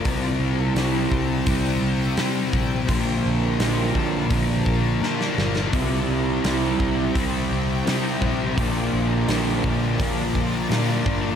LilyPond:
<<
  \new Staff \with { instrumentName = "Ambient pad" } { \time 4/4 \key c \mixolydian \tempo 4 = 84 <e' g' c'' g''>1 | <f' bes' d'' a''>1 | <e' g' c'' g''>1 | <f' bes' d'' a''>1 | }
  \new Staff \with { instrumentName = "Overdriven electric guitar" } { \clef bass \time 4/4 \key c \mixolydian <c g c' e'>1 | <bes, d f bes f'>1 | <c g c' e'>1 | <bes, d f bes f'>1 | }
  \new Staff \with { instrumentName = "Overdriven electric guitar" } { \clef bass \time 4/4 \key c \mixolydian r1 | r1 | <c g c' e'>4 <c g c' e'>8 <c g c' e'>8 <c g c' e'>4 <c g c' e'>8 <c g c' e'>8 | <bes, d f bes d'>4 <bes, d f bes d'>8 <bes, d f bes d'>8 <bes, d f bes d'>4 <bes, d f bes d'>8 <bes, d f bes d'>8 | }
  \new Staff \with { instrumentName = "Distorted electric guitar" } { \clef bass \time 4/4 \key c \mixolydian <c g c'>4 <c g c'>4 <c g c'>4 <c g c'>4 | <bes, f bes>4 <bes, f bes>4 <bes, f bes>4 <bes, f bes>4 | <c g c'>4 <c g c'>4 <c g c'>4 <c g c'>4 | <bes, f bes>4 <bes, f bes>4 <bes, f bes>4 <bes, f bes>4 | }
  \new Staff \with { instrumentName = "Picked electric bass" } { \clef bass \time 4/4 \key c \mixolydian c,8 c,8 c,8 c,8 c,8 c,8 c8 bes,,8 | bes,,8 bes,,8 bes,,8 bes,,8 bes,,8 bes,,8 bes,8 g,,8 | c,8 c,8 c,8 c,8 c,8 c,8 c8 bes,,8 | bes,,8 bes,,8 bes,,8 bes,,8 bes,,8 bes,,8 bes,8 g,,8 | }
  \new DrumStaff \with { instrumentName = "Drums" } \drummode { \time 4/4 <hho bd>4 <hho sn>8 bd8 <hho bd>4 <hho sn>8 bd8 | <hho bd>4 <hho sn>8 bd8 <hho bd>8 bd8 sn16 sn16 sn16 sn16 | <hho bd>4 <hho sn>8 bd8 <hho bd>4 <hho sn>8 bd8 | <hho bd>4 <hho sn>8 bd8 <hho bd>8 bd8 <hho sn>8 bd8 | }
>>